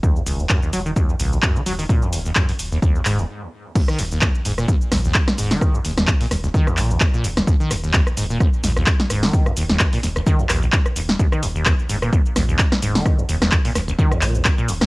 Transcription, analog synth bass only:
X:1
M:4/4
L:1/8
Q:"Swing 16ths" 1/4=129
K:Ebm
V:1 name="Analog synth bass" clef=bass
z E,,, z E,,, z B,,, z E,,, | z E,,, z E,,, z E,,, z2 | z E,,, z E,,, z B,,, z E,,, | z E,,, z E,,, z B,,, z E,,, |
z E,,, z E,,, z B,,, z E,,, | z E,,, z E,,, z B,,, z E,,, | z E,,, z E,,, z B,,, z E,,, | z E,,, z E,,, z B,,, z E,,, |]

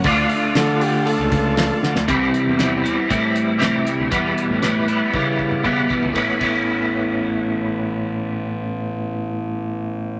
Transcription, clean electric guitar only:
X:1
M:4/4
L:1/8
Q:1/4=118
K:Amix
V:1 name="Clean electric guitar" clef=bass
[D,A,D=F]8 | [=C,E,G,=CE]2 [E,G,CE] [G,CE] [E,G,CE]2 [C,E,G,CE] [G,CE] | [E,,B,,E,G,B,E]2 [E,G,B,E] [E,G,B,E] [E,G,B,E]2 [E,,B,,E,G,B,E] [E,G,B,E] | [A,,E,B,CE] [A,,E,B,CE]6- [A,,E,B,CE]- |
[A,,E,B,CE]8 |]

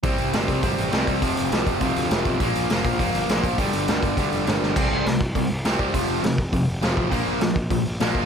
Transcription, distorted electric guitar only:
X:1
M:4/4
L:1/8
Q:1/4=204
K:C
V:1 name="Distorted electric guitar" clef=bass
[C,G,C]2 [C,G,C]2 [C,G,C]2 [C,G,C]2 | [F,,C,F,]2 [F,,C,F,]2 [F,,C,F,]2 [F,,C,F,]2 | [_B,,F,_B,]2 [B,,F,B,]2 [B,,F,B,]2 [B,,F,B,]2 | [G,,D,G,]2 [G,,D,G,]2 [G,,D,G,]2 [G,,D,G,]2 |
[C,G,C]2 [C,G,] z [C,G,] z [C,G,C]2 | [F,,C,F,]2 [F,,C,] z [F,,C,] z [F,,C,F,]2 | [_B,,F,_B,]2 [B,,F,] z [B,,F,] z [B,,F,B,]2 |]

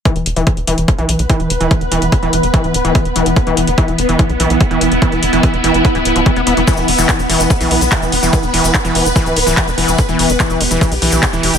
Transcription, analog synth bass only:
X:1
M:4/4
L:1/16
Q:1/4=145
K:Em
V:1 name="Analog synth bass" clef=bass
z E,,, E,,, E,,, z E,,, E,,, E,,, z B,,, B,,, B,,, z E,,, E,,, E,,, | z E,,, E,,, E,,, z E,,, E,,, E,,, z D,,, D,,, D,,, z E,,, E,,, E,,, | z E,,, E,,, E,,, z E,,, E,,, E,,, z B,,, B,,, B,,, z E,,, E,,, E,,, | z E,,, E,,, E,,, z E,,, E,,, E,,, z D,,, D,,, D,,, z E,,, E,,, E,,, |
z E,,, E,,, E,,, z E,,, E,,, E,,, z B,,, B,,, B,,, z E,,, E,,, E,,, | z E,,, E,,, E,,, z E,,, E,,, E,,, z D,,, D,,, D,,, z E,,, E,,, E,,, | z E,,, E,,, E,,, z E,,, E,,, E,,, z B,,, B,,, B,,, z E,,, E,,, E,,, |]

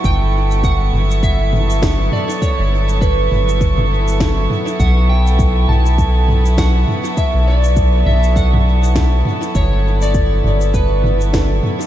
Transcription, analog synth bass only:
X:1
M:4/4
L:1/16
Q:"Swing 16ths" 1/4=101
K:Glyd
V:1 name="Analog synth bass" clef=bass
G,,,6 G,,,8 z2 | z G,,,4- G,,, G,,,8 z2 | B,,,6 B,,,8 z2 | z B,,,4- B,,, B,,,8 z2 |
G,,,6 G,,,8 z2 |]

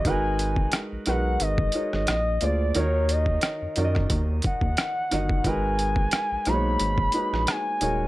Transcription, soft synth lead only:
X:1
M:4/4
L:1/16
Q:"Swing 16ths" 1/4=89
K:G#m
V:1 name="Soft synth lead"
g4 z2 f2 d3 d3 =d2 | c2 d4 z4 f6 | g6 b6 g4 |]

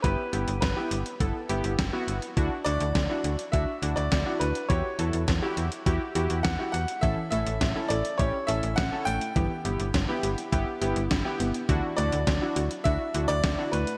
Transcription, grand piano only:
X:1
M:4/4
L:1/16
Q:1/4=103
K:Glyd
V:1 name="Grand piano"
B4 B4 z8 | z2 d6 e3 d3 B2 | c12 f2 f2 | e2 e4 d2 c2 e2 f2 g2- |
g8- g2 z6 | z2 d6 e3 d3 B2 |]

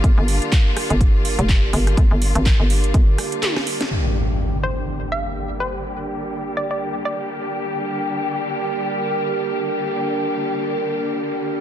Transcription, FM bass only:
X:1
M:4/4
L:1/16
Q:"Swing 16ths" 1/4=124
K:Gm
V:1 name="FM bass" clef=bass
G,,, G,,,2 z4 G,,,4 F,,,3 G,,,2 | G,,, G,,,2 _A,,,2 G,,,3 G,,,2 z6 | z16 | z16 |
z16 | z16 |]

